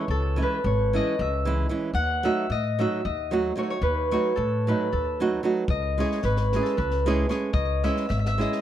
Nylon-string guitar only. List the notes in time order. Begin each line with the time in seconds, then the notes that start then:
0.36 E3 G#3 C#4 E4
0.93 E3 G#3 C#4 E4
1.45 E3 G#3 C#4 E4
1.69 E3 G#3 C#4 E4
2.23 F#3 A3 D#4 F#4
2.79 F#3 A3 D#4 F#4
3.31 F#3 A3 D#4 F#4
3.56 F#3 A3 D#4 F#4
4.11 F#3 A3 D#4 F#4
4.67 F#3 A3 D#4 F#4
5.20 F#3 A3 D#4 F#4
5.43 F#3 A3 D#4 F#4
5.98 G#3 C#4 E4 G#4
6.54 G#3 C#4 E4 G#4
7.06 G#3 C#4 E4 G#4
7.29 G#3 C#4 E4 G#4
7.84 G#3 C#4 E4 G#4
8.38 G#3 C#4 E4 G#4